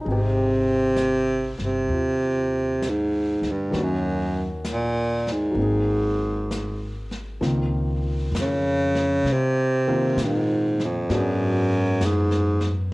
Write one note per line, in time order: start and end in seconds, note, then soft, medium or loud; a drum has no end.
0.01 3.70 D#4 soft
0.01 3.72 G#4 soft
0.06 1.55 G#1 medium
0.06 3.74 C4 soft
0.06 brush sweep soft
0.11 1.57 C3 medium
0.11 3.76 G4 soft
0.96 brush sweep soft
0.96 snare soft
0.96 hi-hat pedal soft
1.58 1.87 G1 medium
1.58 snare soft
1.65 2.91 C3 medium
1.89 3.38 D#2 medium
1.89 3.74 F4 soft
1.89 brush sweep soft
2.82 brush sweep soft
2.82 snare soft
2.82 hi-hat pedal soft
2.90 3.53 G#2 medium
3.42 3.70 D2 medium
3.42 snare soft
3.51 3.85 G2 medium
3.71 5.53 D#2 medium
3.71 5.56 D#3 soft
3.71 5.52 A#3 soft
3.71 5.57 C#4 soft
3.71 brush sweep soft
3.71 snare soft
3.76 5.58 F#4 soft
3.83 4.52 F#2 medium
4.65 brush sweep soft
4.65 snare soft
4.65 hi-hat pedal soft
4.72 5.33 A#2 medium
5.27 snare soft
5.32 7.14 G#2 medium
5.51 7.37 G#1 medium
5.51 7.39 F#3 soft
5.51 7.40 A#3 soft
5.57 7.40 C4 soft
5.57 brush sweep soft
5.62 7.44 G#4 soft
6.51 brush sweep soft
6.51 snare soft
6.51 hi-hat pedal soft
7.11 snare soft
7.41 8.30 C#2 medium
7.41 7.97 D#3 soft
7.41 7.97 A#3 soft
7.41 7.97 C4 soft
7.41 7.97 F4 soft
7.41 brush sweep soft
7.41 snare soft
8.32 9.22 F2 medium
8.32 snare medium
8.32 hi-hat pedal medium
8.41 9.34 C#3 medium
8.95 snare soft
9.24 10.14 C3 medium
9.24 brush sweep soft
9.24 snare soft
9.32 10.21 C3 medium
9.88 10.15 D#3 medium
9.88 10.15 A#3 medium
9.88 10.15 C4 medium
9.88 10.15 F4 medium
10.17 11.06 A#2 medium
10.17 snare soft
10.17 hi-hat pedal soft
10.24 10.87 G#2 medium
10.80 snare soft
10.85 11.17 F2 medium
11.10 11.98 G#2 medium
11.10 11.65 F#3 soft
11.10 11.65 B3 soft
11.10 11.65 D4 soft
11.10 11.66 G#4 medium
11.10 brush sweep soft
11.10 snare soft
11.15 12.07 F#2 medium
12.00 12.90 F#2 medium
12.00 snare soft
12.00 hi-hat pedal medium
12.05 12.77 G#2 medium
12.31 snare soft
12.61 snare soft